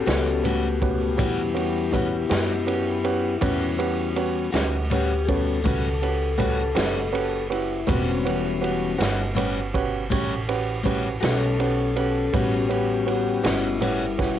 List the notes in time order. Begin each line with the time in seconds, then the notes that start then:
Already playing: B3 F#4 G4
0.06 C#2 G3 C#4 F#4 G4 A4 B4, snare, ride
0.43 A2 G3 A3 C#4 F#4 G4 B4, ride
0.81 A3 C#4 F#4 G4 B4, kick, ride
1.17 E2 A2 G3 C#4 F#4 G4 B4, kick, ride
1.21 E4
1.54 G3 C#4 E4 F#4 G4 B4, ride
1.91 A2 G3 C#4 D#4 F#4 G4 B4, kick, ride
1.96 E4 F#4
2.29 F#2 G3 C#4 F#4 G4 B4, snare, ride
2.66 C#4 F#4 G4 B4, ride
3.04 C#4 F#4 G4 B4, ride
3.41 E2 A2 G3 B3 C#4 F#4 G4 B4, kick, ride
3.78 C#4 F#4 G4 B4, ride
4.16 C#4 F#4 G4 B4, ride
4.52 D2 G3 C#4 F#4 G4 B4, snare, ride
4.90 A2 G3 C#4 F#4 G4 B4, ride
5.25 G3 B3 C#4 F#4 G4 G#4 B4, kick, ride
5.29 A4
5.64 C#2 A2 G3 C#4 F#4 G4 B4, kick, ride
6.02 C#4 F#4 G4 B4, ride
6.38 A2 G3 C#4 F#4 G4 B4, kick, ride
6.75 F#1 G3 C#4 F#4 G4 B4, snare, ride
7.12 C#4 F#4 G4 B4, ride
7.50 C#4 E4 F#4 G4 B4, ride
7.87 E1 A2 G3 B3 C4 C#4 F#4 G4 B4, kick, ride
8.25 E3 C#4 F#4 G4 B4, ride
8.61 C#4 F#4 G4 B4, ride
8.98 G1 G3 C#4 F#4 G4 B4, snare, ride
9.35 A2 G3 C#4 F#4 G4 B4, ride
9.74 C#4 F#4 G4 B4, kick, ride
10.10 A1 A2 G3 C#4 F#4 G4 C#5, kick, ride
10.48 C#4 F#4 G4 B4, ride
10.84 A2 G3 C#4 F#4 G4 B4, kick, ride
11.21 B1 G3 C#4 F#4 G4 G#4 B4, snare, ride
11.25 C#4 A4
11.59 C#4 F#4 G4 A4 B4, ride
11.96 C#4 F#4 G4 A4 B4, ride
12.33 A1 A2 G3 B3 C#4 F#4 G4 B4, kick, ride
12.37 F#4 G4
12.69 C#4 F#4 G4 B4, ride
12.73 B3 G4
13.06 B3 C#4 F#4 G4 B4, ride
13.11 G4
13.43 G1 G3 B3 C#4 F#4 G4 B4, snare, ride
13.47 G3 E4
13.81 A2 G3 C#4 F#4 G4 B4, ride
13.86 G3 E4
14.18 G3 C#4 F#4 G4 B4, kick, snare, ride
14.22 E4